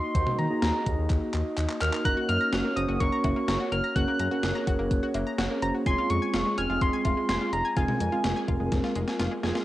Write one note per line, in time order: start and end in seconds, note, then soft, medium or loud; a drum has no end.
0.00 5.82 A#3 medium
0.00 2.02 D#4 medium
0.00 3.92 F#4 medium
0.00 2.02 D#5 medium
0.00 0.40 C6 loud
0.15 0.24 D#2 loud
0.15 0.45 A#3 medium
0.15 0.45 D#4 medium
0.15 0.45 F#4 medium
0.15 0.45 C5 medium
0.15 kick loud
0.15 closed hi-hat medium
0.27 mid tom loud
0.39 0.48 D#3 loud
0.39 1.34 A#5 medium
0.39 closed hi-hat medium
0.50 1.31 A#3 medium
0.50 1.31 D#4 medium
0.50 1.31 F#4 medium
0.50 1.31 G#4 medium
0.62 0.71 D#2 loud
0.62 snare loud
0.62 closed hi-hat medium
0.86 0.95 D#2 loud
0.86 kick loud
0.86 closed hi-hat medium
0.98 1.07 D#2 loud
1.10 1.19 D#2 loud
1.10 kick loud
1.10 clap medium
1.10 closed hi-hat medium
1.34 1.43 D#2 loud
1.34 clap medium
1.34 closed hi-hat medium
1.58 1.67 D#2 loud
1.58 clap medium
1.58 closed hi-hat medium
1.70 clap medium
1.81 1.90 D#2 loud
1.81 2.01 A#3 medium
1.81 2.01 D#4 medium
1.81 2.01 F#4 medium
1.81 2.01 A#4 medium
1.81 2.07 F6 loud
1.81 clap loud
1.81 closed hi-hat medium
1.93 clap loud
2.05 2.14 F#1 loud
2.05 2.65 A#3 medium
2.05 2.65 C#4 medium
2.05 5.82 C#4 medium
2.05 2.65 F#4 medium
2.05 2.65 A#4 medium
2.05 5.82 C#5 medium
2.05 2.14 A#5 loud
2.05 2.28 F#6 loud
2.05 kick loud
2.05 closed hi-hat medium
2.17 2.26 F#4 medium
2.29 2.38 F#2 loud
2.29 2.38 A#3 medium
2.29 2.78 F6 loud
2.29 closed hi-hat medium
2.41 2.50 A#5 medium
2.53 2.62 F#1 loud
2.53 2.61 F#4 medium
2.53 snare loud
2.53 closed hi-hat medium
2.65 2.73 A#3 medium
2.76 2.86 F#1 loud
2.76 2.87 A#3 medium
2.76 2.87 C#4 medium
2.76 2.87 F#4 medium
2.76 2.87 C5 medium
2.76 2.85 A#5 loud
2.76 3.02 D#6 loud
2.76 closed hi-hat medium
2.88 2.98 F#1 loud
2.88 3.69 A#3 medium
2.88 3.69 C#4 medium
2.88 2.97 F#4 medium
2.88 3.69 F#4 medium
2.88 3.69 A#4 medium
3.00 3.09 F#1 loud
3.00 3.09 A#3 medium
3.00 3.73 C#6 loud
3.00 kick loud
3.00 closed hi-hat medium
3.12 3.21 A#5 medium
3.24 3.33 F#1 loud
3.24 3.33 F#4 medium
3.24 kick medium
3.24 closed hi-hat medium
3.24 cowbell medium
3.36 3.45 A#3 medium
3.48 3.57 F#1 loud
3.48 3.57 A#5 loud
3.48 snare loud
3.48 closed hi-hat medium
3.60 3.69 F#4 medium
3.72 3.81 F#1 loud
3.72 3.81 A#3 medium
3.72 3.97 F6 loud
3.72 closed hi-hat medium
3.84 3.92 A#5 medium
3.96 4.05 F#1 loud
3.96 4.26 A#3 medium
3.96 4.26 C#4 medium
3.96 4.04 F#4 loud
3.96 4.26 F#4 medium
3.96 5.84 G#4 medium
3.96 4.26 A#4 medium
3.96 4.91 F#6 loud
3.96 kick loud
3.96 closed hi-hat medium
4.08 4.16 A#3 medium
4.19 4.28 F#2 loud
4.19 4.28 A#5 medium
4.19 closed hi-hat medium
4.31 5.12 A#3 medium
4.31 5.12 C#4 medium
4.31 4.40 F#4 medium
4.31 5.12 F#4 medium
4.31 5.12 A#4 medium
4.43 4.52 F#1 loud
4.43 snare loud
4.43 closed hi-hat medium
4.55 4.64 A#5 medium
4.67 4.76 F#1 loud
4.67 4.76 F#4 medium
4.67 kick loud
4.67 closed hi-hat medium
4.79 4.88 F#1 loud
4.79 4.88 A#3 medium
4.91 5.00 F#1 loud
4.91 kick loud
4.91 closed hi-hat medium
5.03 5.12 F#4 medium
5.14 5.24 F#1 loud
5.14 5.24 A#3 medium
5.14 closed hi-hat medium
5.14 cowbell medium
5.27 5.35 A#5 medium
5.38 5.47 F#1 loud
5.38 5.47 F#4 medium
5.38 snare loud
5.38 closed hi-hat medium
5.51 5.59 A#3 medium
5.62 5.71 F#1 loud
5.62 5.82 A#3 medium
5.62 5.82 C#4 medium
5.62 5.82 F#4 medium
5.62 5.82 C5 medium
5.62 5.73 A#5 medium
5.62 5.71 A#5 loud
5.62 closed hi-hat medium
5.75 5.83 F#4 medium
5.86 5.95 F1 loud
5.86 9.63 G#3 medium
5.86 6.46 G#3 medium
5.86 9.63 C4 medium
5.86 6.46 C4 medium
5.86 9.63 F4 medium
5.86 6.46 F4 medium
5.86 7.75 G#4 medium
5.86 6.46 G#4 medium
5.86 5.95 G#5 loud
5.86 6.12 C6 loud
5.86 kick loud
5.86 closed hi-hat medium
5.98 6.07 F4 medium
6.10 6.19 F2 loud
6.10 6.19 G#3 medium
6.10 6.59 C#6 loud
6.10 closed hi-hat medium
6.22 6.31 G#5 medium
6.34 6.43 F1 loud
6.34 6.43 F4 medium
6.34 snare loud
6.34 closed hi-hat medium
6.46 6.54 G#3 medium
6.58 6.67 F1 loud
6.58 6.68 G#3 medium
6.58 6.68 C4 medium
6.58 6.68 F4 medium
6.58 6.68 G#4 medium
6.58 6.66 G#5 loud
6.58 6.83 F6 loud
6.58 closed hi-hat medium
6.69 6.78 F1 loud
6.69 7.50 G#3 medium
6.69 7.50 C4 medium
6.69 6.78 F4 medium
6.69 7.50 F4 medium
6.69 7.50 G#4 medium
6.81 6.90 F1 loud
6.81 6.90 G#3 medium
6.81 7.29 C6 loud
6.81 kick loud
6.81 closed hi-hat medium
6.93 7.02 G#5 medium
7.05 7.14 F1 loud
7.05 7.14 F4 medium
7.05 kick medium
7.05 closed hi-hat medium
7.05 cowbell medium
7.17 7.26 G#3 medium
7.29 7.38 F1 loud
7.29 7.38 G#5 loud
7.29 7.55 C6 loud
7.29 snare loud
7.29 closed hi-hat medium
7.41 7.50 F4 medium
7.53 7.62 F1 loud
7.53 7.62 G#3 medium
7.53 7.78 A#5 loud
7.53 closed hi-hat medium
7.65 7.73 G#5 medium
7.77 7.86 F1 loud
7.77 8.07 G#3 medium
7.77 8.07 C4 medium
7.77 7.85 F4 loud
7.77 8.07 F4 medium
7.77 8.07 G#4 medium
7.77 9.65 A#4 medium
7.77 9.20 G#5 loud
7.77 kick loud
7.77 closed hi-hat medium
7.88 7.97 G#3 medium
7.88 mid tom loud
8.00 8.09 F2 loud
8.00 8.09 G#5 medium
8.00 closed hi-hat medium
8.12 8.93 G#3 medium
8.12 8.93 C4 medium
8.12 8.21 F4 medium
8.12 8.93 F4 medium
8.12 8.93 G#4 medium
8.24 8.33 F1 loud
8.24 snare loud
8.24 closed hi-hat medium
8.36 8.45 G#5 medium
8.48 8.57 F1 loud
8.48 8.57 F4 medium
8.48 kick loud
8.48 closed hi-hat medium
8.60 8.69 F1 loud
8.60 8.69 G#3 medium
8.72 8.81 F1 loud
8.72 kick loud
8.72 snare medium
8.72 closed hi-hat medium
8.84 8.92 F4 medium
8.84 snare medium
8.95 9.05 F1 loud
8.95 9.04 G#3 medium
8.95 closed hi-hat medium
9.08 9.16 G#5 medium
9.08 snare medium
9.19 9.28 F1 loud
9.19 9.28 F4 medium
9.19 snare medium
9.19 closed hi-hat medium
9.31 9.40 G#3 medium
9.43 9.52 F1 loud
9.43 9.63 G#3 medium
9.43 9.63 C4 medium
9.43 9.63 F4 medium
9.43 9.63 G#4 loud
9.43 9.52 G#5 medium
9.43 snare loud
9.43 closed hi-hat medium
9.55 9.64 F4 medium
9.55 snare loud